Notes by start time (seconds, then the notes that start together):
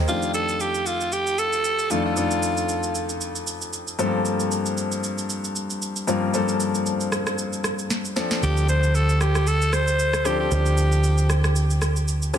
Already playing: D#3 D4 C5
0.08 F2 D#3 A3 D4 F4 G4, shaker
0.22 shaker
0.34 A4, shaker
0.49 shaker
0.60 G4, shaker
0.74 shaker
0.86 F4, shaker
1.01 shaker
1.12 G4, shaker
1.27 shaker
1.38 A4, shaker
1.53 shaker
1.65 shaker
1.79 shaker
1.90 F2 D#3 A3 D4 F4 A4, shaker
2.06 F4
2.16 F2 D#3 A3 D4 A4, shaker
2.31 shaker
2.43 shaker
2.57 shaker
2.69 shaker
2.83 shaker
2.95 shaker
3.09 shaker
3.21 shaker
3.36 shaker
3.47 shaker
3.62 shaker
3.73 shaker
3.88 shaker
3.99 G2 F3 A3 C4 A4, shaker
4.06 A#3
4.25 shaker
4.40 shaker
4.52 shaker
4.66 shaker
4.78 shaker
4.92 shaker
5.04 shaker
5.18 shaker
5.30 shaker
5.44 shaker
5.56 shaker
5.70 shaker
5.82 shaker
5.96 shaker
6.07 G2 F3 A#3 C4 F4, shaker
6.34 G2 F3 A#3 C4 A4, shaker
6.48 shaker
6.60 shaker
6.75 shaker
6.86 shaker
7.01 shaker
7.12 cross-stick, shaker
7.27 cross-stick, shaker
7.38 shaker
7.53 shaker
7.64 cross-stick, shaker
7.79 shaker
7.90 snare, shaker
8.05 shaker
8.16 F3 C4 D4 A4, snare, shaker
8.31 snare, shaker
8.43 D2 G4, shaker
8.57 shaker
8.69 C5, shaker
8.83 shaker
8.95 A4, shaker
9.09 shaker
9.21 G4, cross-stick, shaker
9.35 cross-stick, shaker
9.47 A4, shaker
9.61 shaker
9.73 C5, cross-stick, shaker
9.87 shaker
9.99 shaker
10.13 cross-stick, shaker
10.25 F3 C4 D4 G4 A4, cross-stick, shaker
10.40 G4
10.51 D2 F3 C4 D4 C5, shaker
10.66 shaker
10.78 shaker
10.92 shaker
11.04 shaker
11.18 shaker
11.30 cross-stick, shaker
11.44 cross-stick, shaker
11.56 shaker
11.70 shaker
11.82 cross-stick, shaker
11.96 shaker
12.08 shaker
12.22 shaker
12.34 F3 C4 D4 G4, cross-stick, shaker